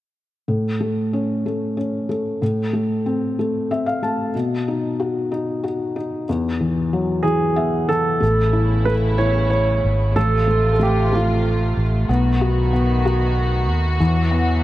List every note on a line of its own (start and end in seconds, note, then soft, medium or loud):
0.48 2.38 A2 soft
0.81 1.44 A3 soft
1.13 1.76 C#4 soft
1.46 2.08 A3 soft
1.77 2.40 C#4 soft
2.09 2.41 A3 soft
2.42 4.31 A2 soft
2.73 3.38 A3 soft
3.06 3.70 C4 soft
3.39 4.01 A3 soft
3.71 4.33 C4 soft
3.71 3.86 E5 soft
3.86 4.01 F5 soft
4.03 4.34 A3 soft
4.03 4.33 A5 soft
4.35 6.24 B2 medium
4.68 5.30 D#4 soft
5.00 5.62 F#4 soft
5.32 5.94 D#4 soft
5.64 6.26 F#4 soft
5.96 6.27 D#4 soft
6.29 8.18 E2 medium
6.61 7.22 E3 soft
6.93 8.18 F#3 soft
7.23 7.87 E3 soft
7.23 7.90 G#4 medium
7.56 8.20 B3 soft
7.56 7.87 E5 medium
7.89 8.20 E3 soft
7.89 8.89 A4 medium
7.89 8.19 A5 soft
8.20 9.80 A1 medium
8.20 10.14 C#3 medium
8.20 8.84 A3 medium
8.20 13.96 A3 medium
8.20 10.14 B3 medium
8.20 10.14 E4 medium
8.53 9.17 E4 soft
8.85 10.12 A3 soft
8.85 8.93 B4 medium
9.18 10.13 E4 soft
9.18 9.49 C#5 medium
9.50 10.17 C#5 medium
9.84 10.14 G#1 medium
10.16 11.73 A1 medium
10.16 12.07 C3 medium
10.16 12.07 F3 medium
10.16 10.46 A3 medium
10.16 12.07 F4 medium
10.16 10.72 A4 medium
10.48 10.78 A3 soft
10.73 10.80 A4 medium
10.79 11.11 A3 soft
10.79 11.15 G4 medium
11.13 12.06 A3 soft
11.13 11.82 F4 medium
11.77 12.07 A1 medium
12.09 13.70 B1 medium
12.09 13.99 D#3 medium
12.09 12.72 B3 medium
12.09 13.99 B3 medium
12.09 14.63 F#4 medium
12.41 13.04 F#4 soft
12.73 13.97 B3 soft
13.05 13.98 F#4 soft
13.70 13.99 D#2 medium
13.99 14.63 E2 medium
13.99 14.63 E3 medium
13.99 14.63 F#3 medium
13.99 14.63 B3 medium
14.31 14.63 B3 soft